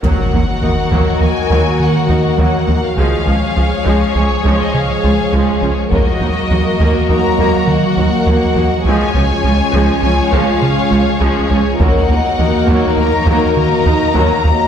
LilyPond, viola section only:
\new Staff \with { instrumentName = "Viola section" } { \time 5/4 \key ees \minor \tempo 4 = 102 <ges bes>8 bes8 <bes ees'>8 <ges bes>8 bes8 <ges bes>8 r8 <bes ees'>8 <ges bes>8 bes8 | <f aes>8 <f des'>8 <f f'>8 <f aes>8 <f des'>8 <f aes>8 r8 <f f'>8 <f aes>8 <f des'>8 | bes8 <bes ees'>8 <bes ges'>8 bes8 <bes ees'>8 bes8 r8 <bes ges'>8 bes8 <bes ees'>8 | <f aes>8 <f des'>8 <f f'>8 <f aes>8 <f des'>8 <f aes>8 r8 <f f'>8 <f aes>8 <f des'>8 |
<ges bes>8 bes8 <bes ees'>8 <ges bes>8 bes8 <ges bes>8 r8 <bes ees'>8 <ges bes>8 bes8 | }